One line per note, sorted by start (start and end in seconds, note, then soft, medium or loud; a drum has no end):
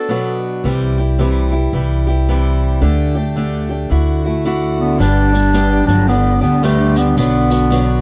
0.00 0.43 A4 medium
0.09 0.64 B2 medium
0.09 0.64 F#3 medium
0.09 0.64 B3 medium
0.09 0.64 D4 medium
0.09 0.65 F#4 medium
0.64 1.69 C2 medium
0.64 0.98 C3 medium
0.64 0.98 E3 medium
0.64 0.98 G3 medium
0.64 0.98 E4 medium
0.64 0.97 G4 medium
0.98 1.19 G3 soft
0.98 1.19 E4 soft
0.98 1.19 G4 medium
1.19 1.52 C3 medium
1.19 1.53 E3 medium
1.19 1.53 G3 medium
1.19 1.51 E4 medium
1.19 1.50 G4 medium
1.51 1.73 G3 soft
1.51 1.73 E4 soft
1.51 1.73 G4 soft
1.73 2.78 C2 medium
1.73 2.07 E3 medium
1.73 2.07 G3 medium
1.73 2.07 E4 medium
1.73 2.06 G4 medium
2.07 2.28 G3 soft
2.07 2.28 E4 soft
2.07 2.28 G4 medium
2.29 2.83 C3 medium
2.29 2.81 E3 medium
2.29 2.81 G3 medium
2.29 2.82 E4 medium
2.29 2.82 G4 medium
2.81 3.87 D2 medium
2.81 3.15 D3 medium
2.81 3.16 A3 medium
2.81 3.15 D4 medium
2.81 3.14 G4 medium
3.15 3.35 A3 soft
3.15 3.36 D4 soft
3.15 3.36 G4 soft
3.36 3.70 D3 medium
3.36 3.70 A3 medium
3.36 3.70 D4 medium
3.36 3.68 G4 medium
3.69 3.89 A3 soft
3.69 3.91 D4 soft
3.69 3.90 G4 soft
3.90 4.96 D2 medium
3.90 4.24 D3 medium
3.90 4.24 A3 medium
3.90 4.25 E4 medium
3.90 4.23 F#4 medium
4.24 4.44 A3 soft
4.24 4.45 E4 soft
4.24 4.45 F#4 soft
4.45 4.98 D3 medium
4.45 5.00 A3 medium
4.45 4.99 E4 medium
4.45 5.00 F#4 medium
4.79 5.02 D3 medium
4.79 5.01 B3 medium
4.99 5.84 G1 medium
4.99 5.33 G2 medium
4.99 5.33 D3 medium
4.99 5.33 G3 medium
4.99 5.87 G3 medium
4.99 5.33 B3 medium
4.99 5.86 D4 medium
4.99 5.32 D4 medium
4.99 5.31 G4 medium
4.99 tambourine medium
5.33 5.53 G3 soft
5.33 5.53 B3 soft
5.33 5.53 D4 soft
5.33 5.54 G4 soft
5.33 tambourine medium
5.53 5.87 G2 medium
5.53 5.87 D3 medium
5.53 5.88 G3 medium
5.53 5.88 B3 medium
5.53 5.87 D4 medium
5.53 5.85 G4 medium
5.53 tambourine medium
5.87 6.39 G1 medium
5.87 6.11 F#3 medium
5.87 6.06 G3 soft
5.87 6.07 B3 soft
5.87 6.10 D4 medium
5.87 6.07 D4 soft
5.87 6.08 G4 soft
5.87 tambourine medium
6.07 6.42 D3 medium
6.07 6.41 G3 medium
6.07 6.41 B3 medium
6.07 6.40 D4 medium
6.07 6.39 G4 medium
6.07 tambourine soft
6.41 7.13 D2 medium
6.41 6.64 D3 medium
6.41 6.63 G3 soft
6.41 6.63 B3 soft
6.41 6.66 B3 medium
6.41 6.62 D4 soft
6.41 6.62 G4 medium
6.41 tambourine soft
6.63 7.17 G2 medium
6.63 7.16 D3 medium
6.63 6.98 D3 medium
6.63 7.17 G3 medium
6.63 6.99 A3 medium
6.63 7.17 B3 medium
6.63 7.17 D4 medium
6.63 7.18 G4 medium
6.63 tambourine medium
6.96 7.18 D3 medium
6.96 7.17 B3 medium
6.96 tambourine medium
7.17 8.01 B1 medium
7.17 7.50 B2 medium
7.17 8.01 D3 medium
7.17 7.51 F#3 medium
7.17 7.51 B3 medium
7.17 8.01 B3 medium
7.17 7.50 D4 medium
7.17 7.49 F#4 medium
7.17 tambourine medium
7.50 7.70 B3 soft
7.50 7.70 D4 soft
7.50 7.71 F#4 medium
7.50 tambourine medium
7.70 8.01 B2 medium
7.70 8.01 F#3 medium
7.70 8.01 B3 medium
7.70 8.01 D4 medium
7.70 8.01 F#4 medium
7.70 tambourine medium